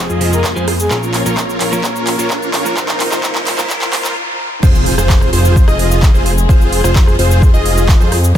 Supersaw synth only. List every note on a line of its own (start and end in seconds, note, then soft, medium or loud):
0.09 0.53 F4 medium
0.09 0.53 G#4 medium
0.09 0.53 D#5 loud
0.56 0.73 F4 medium
0.56 0.73 G#4 medium
0.56 0.73 C5 medium
0.91 1.23 F4 medium
0.91 1.23 A#4 medium
0.91 1.23 C#5 medium
1.26 1.58 F4 medium
1.26 1.58 A#4 medium
1.26 1.58 C#5 loud
1.60 1.82 F4 medium
1.60 1.82 A#4 medium
1.60 1.82 C#5 medium
1.84 2.16 F4 medium
1.84 2.16 A#4 medium
1.84 2.16 C#5 medium
2.18 2.51 F4 medium
2.18 2.51 A#4 medium
2.18 2.51 C#5 loud
2.53 2.75 F4 medium
2.53 2.75 A#4 medium
2.53 2.75 C#5 loud
2.77 3.09 A#4 medium
2.77 3.09 C5 medium
3.12 3.22 F4 loud
3.12 3.22 A#4 medium
3.12 3.21 C5 loud
3.23 3.55 F4 medium
3.23 3.55 A#4 medium
3.58 3.68 F4 loud
3.58 3.68 A#4 medium
3.58 3.68 C5 loud
3.70 3.91 F4 medium
3.70 3.91 A#4 medium
3.70 3.91 C5 medium
3.93 4.15 F4 medium
3.93 4.14 A#4 medium
3.93 4.14 C5 medium
4.63 4.95 F4 medium
4.63 4.95 G#4 medium
4.63 4.95 C5 medium
4.98 5.30 F4 loud
4.98 5.30 G#4 medium
4.98 5.30 C5 loud
5.33 5.65 F4 medium
5.33 5.65 G#4 medium
5.33 5.65 C5 loud
5.67 6.11 F4 loud
5.67 6.11 G#4 medium
5.67 6.11 D#5 loud
6.14 6.31 F4 medium
6.14 6.31 G#4 medium
6.14 6.31 C5 medium
6.49 6.81 F4 medium
6.49 6.81 G#4 medium
6.49 6.81 C5 medium
6.84 7.16 F4 loud
6.84 7.16 G#4 medium
6.84 7.16 C5 loud
7.19 7.51 F4 medium
7.19 7.51 G#4 medium
7.19 7.51 C5 loud
7.54 7.97 F4 medium
7.54 7.97 G#4 medium
7.54 7.97 D#5 loud
8.00 8.17 F4 medium
8.00 8.17 G#4 medium
8.00 8.17 C5 medium